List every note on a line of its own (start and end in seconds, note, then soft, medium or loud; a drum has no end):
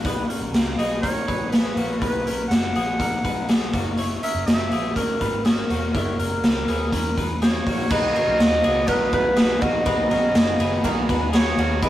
0.05 0.26 B1 medium
0.05 0.30 D#4 medium
0.05 0.29 B4 medium
0.05 kick loud
0.05 closed hi-hat medium
0.29 0.76 C#4 soft
0.29 0.76 A#4 medium
0.29 closed hi-hat medium
0.41 0.52 B1 medium
0.53 0.74 C#2 medium
0.53 snare loud
0.53 closed hi-hat medium
0.78 1.20 B1 medium
0.78 1.04 B3 medium
0.78 1.03 G#4 medium
0.78 1.01 D#5 medium
0.78 closed hi-hat medium
1.02 1.27 D#4 soft
1.02 1.27 A#4 medium
1.02 1.52 C#5 medium
1.02 kick medium
1.02 closed hi-hat medium
1.28 1.70 A#1 medium
1.28 1.53 D#4 soft
1.28 1.52 B4 medium
1.28 kick medium
1.28 closed hi-hat medium
1.50 1.77 B3 medium
1.50 1.77 G#4 medium
1.50 1.99 B4 medium
1.50 snare loud
1.50 closed hi-hat medium
1.76 1.97 A#1 medium
1.76 2.02 A#3 soft
1.76 2.02 F#4 medium
1.76 closed hi-hat medium
1.99 2.22 B1 medium
1.99 2.27 D#4 medium
1.99 2.46 B4 medium
1.99 2.26 B4 medium
1.99 kick loud
1.99 closed hi-hat medium
2.26 2.47 B1 medium
2.26 2.73 C#4 soft
2.26 2.73 A#4 medium
2.26 closed hi-hat medium
2.48 2.71 F#1 medium
2.48 3.68 F#5 medium
2.48 snare loud
2.48 closed hi-hat medium
2.75 2.96 A#1 medium
2.75 3.00 B3 medium
2.75 3.00 G#4 medium
2.75 closed hi-hat medium
2.99 3.20 A#1 medium
2.99 3.24 D#4 soft
2.99 3.24 A#4 medium
2.99 kick medium
2.99 closed hi-hat medium
3.24 3.66 B1 medium
3.24 3.49 D#4 medium
3.24 3.49 B4 medium
3.24 kick medium
3.24 closed hi-hat medium
3.49 3.74 B3 medium
3.49 3.74 G#4 medium
3.49 snare loud
3.49 closed hi-hat medium
3.73 4.15 F#1 medium
3.73 3.99 A#3 medium
3.73 3.98 F#4 medium
3.73 kick loud
3.73 closed hi-hat medium
3.97 4.23 E4 medium
3.97 4.23 C#5 loud
3.97 closed hi-hat medium
4.23 4.70 C#4 medium
4.23 4.69 A#4 medium
4.23 4.46 E5 medium
4.23 closed hi-hat medium
4.35 4.45 F#1 medium
4.46 4.67 F#1 medium
4.46 4.92 E5 medium
4.46 snare loud
4.46 closed hi-hat medium
4.72 5.14 A#1 medium
4.72 4.97 B3 medium
4.72 4.97 G#4 medium
4.72 closed hi-hat medium
4.96 5.21 C#4 medium
4.96 5.42 A#4 loud
4.96 5.21 A#4 medium
4.96 kick medium
4.96 closed hi-hat medium
5.21 5.62 G#1 medium
5.21 5.46 D#4 soft
5.21 5.45 B4 medium
5.21 kick medium
5.21 closed hi-hat medium
5.45 5.71 C#4 medium
5.45 5.70 G#4 medium
5.45 5.90 A#4 medium
5.45 snare loud
5.45 closed hi-hat medium
5.70 5.91 E1 medium
5.70 5.95 A#3 medium
5.70 5.95 F#4 medium
5.70 closed hi-hat medium
5.93 6.15 F#1 loud
5.93 6.20 E4 medium
5.93 7.37 A#4 medium
5.93 6.19 C#5 medium
5.93 kick loud
5.93 closed hi-hat medium
6.19 6.40 F#1 medium
6.19 6.66 C#4 soft
6.19 6.65 A#4 medium
6.19 closed hi-hat medium
6.43 6.64 C#2 medium
6.43 snare loud
6.43 closed hi-hat medium
6.67 6.88 D#2 medium
6.67 6.93 B3 medium
6.67 6.92 G#4 medium
6.67 closed hi-hat medium
6.92 7.13 E2 medium
6.92 7.18 C#4 soft
6.92 7.17 A#4 medium
6.92 kick medium
6.92 closed hi-hat medium
7.18 7.59 E2 medium
7.18 7.42 D#4 medium
7.18 7.42 B4 medium
7.18 kick medium
7.18 closed hi-hat medium
7.42 7.67 C#4 medium
7.42 7.66 G#4 medium
7.42 7.92 C#5 medium
7.42 snare loud
7.42 closed hi-hat medium
7.66 7.87 A#1 medium
7.66 7.92 A#3 soft
7.66 7.91 F#4 medium
7.66 kick medium
7.66 open hi-hat medium
7.90 8.11 B1 loud
7.90 8.15 B2 medium
7.90 8.15 D#3 medium
7.90 11.79 D#3 medium
7.90 8.15 F#3 medium
7.90 8.14 B3 medium
7.90 11.79 B3 medium
7.90 8.14 D#4 medium
7.90 8.16 D#4 medium
7.90 9.85 F#4 medium
7.90 8.15 B4 medium
7.90 8.90 D#5 loud
7.90 kick loud
7.90 crash medium
8.15 8.38 F#3 soft
8.15 8.39 B3 soft
8.15 8.62 C#4 medium
8.15 8.39 D#4 medium
8.15 8.61 A#4 medium
8.15 ride medium
8.28 8.38 B1 loud
8.38 8.60 D#2 loud
8.38 8.63 D#3 medium
8.38 8.64 F#3 medium
8.38 8.63 B3 medium
8.38 8.62 D#4 medium
8.38 snare loud
8.38 ride medium
8.64 8.85 C#2 medium
8.64 8.86 F#3 medium
8.64 8.87 B3 medium
8.64 8.89 B3 medium
8.64 8.87 D#4 medium
8.64 8.88 G#4 medium
8.64 ride medium
8.87 9.09 B1 loud
8.87 9.12 B2 medium
8.87 9.12 D#3 medium
8.87 9.13 F#3 medium
8.87 9.12 B3 medium
8.87 9.11 D#4 medium
8.87 9.13 D#4 soft
8.87 9.12 A#4 medium
8.87 9.13 B4 medium
8.87 kick medium
8.87 ride medium
9.12 9.54 B1 loud
9.12 9.36 F#3 medium
9.12 9.36 B3 medium
9.12 9.37 D#4 medium
9.12 9.36 B4 medium
9.12 9.63 B4 loud
9.12 kick medium
9.12 ride medium
9.36 9.61 D#3 medium
9.36 9.62 F#3 medium
9.36 9.61 B3 medium
9.36 9.60 D#4 medium
9.36 9.61 G#4 medium
9.36 snare loud
9.36 ride medium
9.61 9.83 A#1 medium
9.61 9.85 F#3 soft
9.61 9.87 A#3 medium
9.61 9.85 B3 soft
9.61 9.86 D#4 medium
9.61 9.86 F#4 medium
9.61 11.09 D#5 loud
9.61 kick loud
9.61 ride medium
9.85 10.07 B1 loud
9.85 10.10 B2 medium
9.85 10.11 D#3 medium
9.85 10.11 F#3 medium
9.85 10.10 B3 medium
9.85 10.08 D#4 medium
9.85 10.11 D#4 medium
9.85 11.80 G#4 medium
9.85 10.11 B4 loud
9.85 kick loud
9.85 ride medium
10.10 10.32 B1 loud
10.10 10.34 F#3 soft
10.10 10.34 B3 soft
10.10 10.58 C#4 medium
10.10 10.35 D#4 soft
10.10 10.57 A#4 medium
10.10 ride medium
10.34 10.56 F#1 medium
10.34 10.59 D#3 medium
10.34 10.60 F#3 medium
10.34 10.59 B3 medium
10.34 10.58 D#4 medium
10.34 snare loud
10.34 ride medium
10.59 10.80 F#1 loud
10.59 10.83 F#3 soft
10.59 10.84 B3 medium
10.59 10.85 B3 medium
10.59 10.84 D#4 medium
10.59 10.84 G#4 medium
10.59 ride medium
10.84 11.05 B1 medium
10.84 11.09 B2 medium
10.84 11.09 D#3 medium
10.84 11.09 F#3 loud
10.84 11.09 B3 medium
10.84 11.08 D#4 medium
10.84 11.09 D#4 medium
10.84 11.09 A#4 medium
10.84 kick medium
10.84 ride medium
11.09 11.51 D#2 medium
11.09 11.33 F#3 medium
11.09 11.33 B3 medium
11.09 11.33 D#4 medium
11.09 11.32 B4 medium
11.09 kick medium
11.09 ride medium
11.33 11.58 D#3 medium
11.33 11.58 F#3 medium
11.33 11.58 B3 medium
11.33 11.57 B3 medium
11.33 11.56 D#4 medium
11.33 11.58 G#4 medium
11.33 11.80 C#5 medium
11.33 snare loud
11.33 ride medium
11.57 11.79 D#2 medium
11.57 11.82 F#3 soft
11.57 11.83 A#3 medium
11.57 11.82 B3 soft
11.57 11.82 D#4 medium
11.57 11.83 F#4 medium
11.57 ride medium
11.82 11.89 E2 loud
11.82 11.89 E3 medium
11.82 11.89 F#3 medium
11.82 11.89 G#3 medium
11.82 11.89 B3 medium
11.82 11.89 E4 medium
11.82 11.89 F#4 medium
11.82 11.89 G#4 medium
11.82 11.89 B4 medium
11.82 11.89 D#5 loud
11.82 kick loud
11.82 ride medium